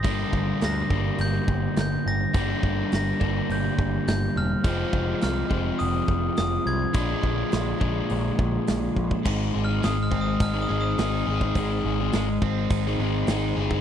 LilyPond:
<<
  \new Staff \with { instrumentName = "Glockenspiel" } { \time 4/4 \key aes \lydian \tempo 4 = 104 bes'''4 bes'''4 g'''4 g'''8 bes'''8~ | bes'''4 bes'''4 g'''4 g'''8 f'''8~ | f'''4 f'''4 ees'''4 ees'''8 aes'''8~ | aes'''2. r4 |
\tuplet 3/2 { r4 f'''8 ees'''8 f'''8 ees'''8 f'''8 ees'''8 ees'''8~ } ees'''8 r8 | r1 | }
  \new Staff \with { instrumentName = "Overdriven electric guitar" } { \time 4/4 \key aes \lydian <g, d g bes d'>4. <g, d g bes d'>2~ <g, d g bes d'>8 | <g, d g bes d'>4. <g, d g bes d'>2~ <g, d g bes d'>8 | <f, c f aes c'>4. <f, c f aes c'>2~ <f, c f aes c'>8 | <bes, f aes d'>4. <bes, f aes d'>2~ <bes, f aes d'>8 |
<aes c' ees' aes'>8 <aes c' ees' aes'>16 <c' ees' aes'>16 <aes c' ees' aes'>8. r8 <c' ees' aes'>16 <aes c' ees' aes'>8 <aes c' ees' aes'>8 <aes c' ees' aes'>16 <c' ees' aes'>16 | <aes c' ees' aes'>8 <aes c' ees' aes'>16 <c' ees' aes'>16 <aes c' ees' aes'>8. r8 <c' ees' aes'>16 <aes c' ees' aes'>8 <aes c' ees' aes'>8 <aes c' ees' aes'>16 <c' ees' aes'>16 | }
  \new Staff \with { instrumentName = "Overdriven electric guitar" } { \clef bass \time 4/4 \key aes \lydian <g, d g bes d' g'>1 | <g, d g bes d' g'>1 | <f, c f aes c' f'>1 | <bes, d aes d' f'>1 |
aes,4 aes8 c'8 ees'8 aes8 ees'8 aes'8 | aes,4 aes8 c'8 ees'8 aes8 ees'8 aes'8 | }
  \new Staff \with { instrumentName = "Picked electric bass" } { \clef bass \time 4/4 \key aes \lydian g,,8 g,,8 d,8 g,,8 g,,8 g,,8 g,,8 g,,8 | g,,8 g,,8 g,,8 g,,8 g,,8 g,,8 g,,8 fes,,8 | f,,8 f,,8 c,8 f,,8 f,,8 f,,8 f,,8 c,8 | bes,,8 bes,,8 bes,,8 bes,,8 bes,,8 bes,,8 bes,,8 bes,,8 |
aes,,8 aes,,8 aes,,8 aes,,8 aes,,8 aes,,8 aes,,8 aes,,8 | aes,,8 aes,,8 aes,,8 aes,,8 aes,,8 aes,,8 aes,,8 g,,8 | }
  \new DrumStaff \with { instrumentName = "Drums" } \drummode { \time 4/4 <hho bd>8 bd8 <hho sn>8 bd8 hho8 bd8 <hho sn>4 | <hho bd>8 bd8 <hho sn>8 bd8 hho8 bd8 <hho sn>4 | <hho bd>8 bd8 <hho sn>8 bd8 hho8 bd8 <hho sn>4 | <hho bd>8 bd8 <hho sn>8 bd8 hho8 bd8 <hho sn>8 bd16 bd16 |
<cymc bd>4 <hho sn>8 bd8 <hho bd>4 <hho sn>8. bd16 | <hho bd>4 <hho sn>8 bd8 <hho bd>4 <hho sn>8. bd16 | }
>>